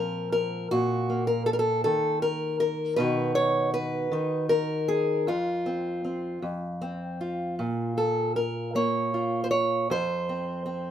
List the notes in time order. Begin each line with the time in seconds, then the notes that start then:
Already playing: A#2 F3 C4 A#4
0.32 A#4
0.71 A#2 F#4
1.10 A#3
1.27 A#4
1.46 A4
1.53 A#4
1.59 A4
1.84 D#3 A4
2.22 A#4
2.60 A#4
2.96 B2 D#3 D#4 F#4 B4
3.35 C#5
3.74 B4
4.12 D#3 D#4
4.49 A#4
4.88 G#4
5.27 F2 F4
5.66 C4
6.05 C4
6.42 F2
6.82 C4
7.21 F4
7.59 A#2
7.98 A4
8.36 A#4
8.75 A#3 C#5
9.14 F4
9.44 C5
9.51 C#5
9.90 F2 C5
10.29 C4
10.66 C4